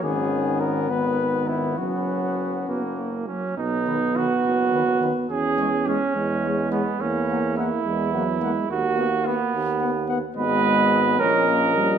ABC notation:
X:1
M:6/8
L:1/16
Q:3/8=70
K:B
V:1 name="Trumpet"
G4 A2 B4 E2 | F8- F2 z2 | z2 B2 B2 z2 B2 B2 | z2 c2 c2 z2 c2 c2 |
z2 f2 f2 z2 f2 f2 | z2 f2 f2 z2 f2 f2 | [K:G#m] d6 d6 |]
V:2 name="Trumpet"
B,6 B,6 | B,6 A,4 C2 | D4 F8 | G4 C6 B,2 |
C4 E8 | F4 B,6 z2 | [K:G#m] B6 A6 |]
V:3 name="French horn"
C6 B,6 | C8- C z3 | z2 D,2 D,2 z2 D,2 D,2 | z2 G,2 G,2 z2 G,2 G,2 |
z2 A,2 A,2 z2 A,2 A,2 | z2 B,2 B,2 z2 B,2 B,2 | [K:G#m] B,6 C6 |]
V:4 name="Trombone" clef=bass
D,6 D,6 | F,6 B,2 A,2 F,2 | B,12 | C6 G,6 |
A,6 G,2 F,2 G,2 | A,8- A,2 z2 | [K:G#m] G,6 C2 A,2 =G,2 |]
V:5 name="Tuba" clef=bass
G,,,12 | F,,,6 F,,,4 z2 | B,,,6 F,,,6 | E,,6 E,,6 |
E,,6 E,,6 | D,,6 D,,6 | [K:G#m] G,,,6 A,,,6 |]